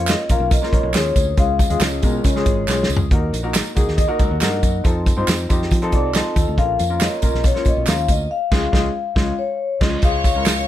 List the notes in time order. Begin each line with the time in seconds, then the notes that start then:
Already playing: F2 A#3 C#4 F4 C#5
0.07 D#5, snare, clap, closed hi-hat, tambourine
0.29 A#1 A#3 C#4 F4 A#4 F5, kick, closed hi-hat, tambourine
0.40 B1
0.50 A#4 D#5, kick, closed hi-hat, tambourine
0.62 A#3 C#4 F4 A#4, snare
0.72 A#1 A#4 C#5, kick, closed hi-hat
0.83 B1
0.93 D#2 A#3 C#4 F4 G#4 A#4 C#5, snare, clap, closed hi-hat, tambourine
1.16 D2, kick, closed hi-hat, tambourine
1.37 C#2 G#3 C#4 F4 G#4 F5, kick, closed hi-hat, tambourine
1.59 kick, closed hi-hat, tambourine
1.69 D#2 G#3 C#4 F4 G#4, closed hi-hat
1.80 C#2 C#4 F4 D#5, snare, clap, closed hi-hat, tambourine
2.02 B2 G#3 C#4 F4 G#4 A#4, kick, closed hi-hat, tambourine
2.18 D#5
2.24 C#3 A#4 C#5, kick, closed hi-hat, tambourine
2.35 G#3 C#4 F4 G#4, snare
2.46 G#1, kick, closed hi-hat, tambourine
2.68 B1 G#3 C#4 F4 G#4, snare, clap, tambourine
2.83 snare
2.89 C#2, tambourine
2.97 floor tom
3.11 D#2 A#3 D#4 F#4 A#4, kick, closed hi-hat
3.33 A#1, closed hi-hat, tambourine
3.43 A#3 D#4 F#4 A#4
3.54 snare, clap, closed hi-hat, tambourine
3.75 C#2 A#3 D#4 F#4 G#4, kick, closed hi-hat, tambourine
3.88 D#2, snare
3.97 D#5, kick, closed hi-hat, tambourine
4.08 A#3 D#4 F#4 A#4
4.19 C#2 F#4 A#4, kick, closed hi-hat, tambourine
4.31 D#2
4.41 G2 A#3 D#4 F#4 A#4, snare, clap, closed hi-hat, tambourine
4.63 F#2, kick, closed hi-hat, tambourine
4.84 F2 C4 D#4 F4 A4, kick, closed hi-hat, tambourine
5.06 kick, closed hi-hat, tambourine
5.17 G2 C4 D#4 F4 C5
5.28 F2, snare, clap, closed hi-hat, tambourine
5.49 F2 C4 D#4 F4 G4, kick, closed hi-hat, tambourine
5.62 snare
5.71 F3, kick, closed hi-hat, tambourine
5.82 C4 D#4 F4 A4, closed hi-hat
5.92 C2 D5, kick, closed hi-hat
6.14 C4 D#4 F4 A4 C5 D#5, snare, clap, closed hi-hat, tambourine
6.36 D#2 F4 A4, kick, closed hi-hat, tambourine
6.48 D2
6.57 A#1 A#3 C#4 F4 A#4 F5, kick, closed hi-hat
6.79 F2, closed hi-hat, tambourine
6.89 A#3 C#4 F4 A#4
7.00 A#4 C#5 D#5, snare, clap, closed hi-hat, tambourine
7.22 A#1 A#3 C#4 F4 A#4, kick, closed hi-hat, tambourine
7.34 B1, snare
7.43 C#4 F4 C#5, kick, closed hi-hat, tambourine
7.54 A#3 C#4 F4 C#5, snare
7.65 A#1 D#5, kick, closed hi-hat, tambourine
7.77 B1
7.86 D#2 A#3 C#4 F4 A#4 F5, snare, clap, closed hi-hat, tambourine
8.08 D2 D#5, kick, closed hi-hat, tambourine
8.31 F5
8.51 C#2 G#3 C#4 F4 G#4, kick, snare, crash
8.72 C#2 G#3 C#4 F4 G#4, kick, snare
9.15 C#2 G#3 C#4 F4, kick, snare
9.39 C#5
9.80 C#2 G#3 C#4 F4, kick, snare, crash
10.02 C#2 G#3 C#4 F4 G#4 C#5 F5 C#6, kick, closed hi-hat, tambourine
10.24 kick, closed hi-hat, tambourine
10.35 G#3 C#4 F4 A#4
10.45 snare, clap, closed hi-hat, tambourine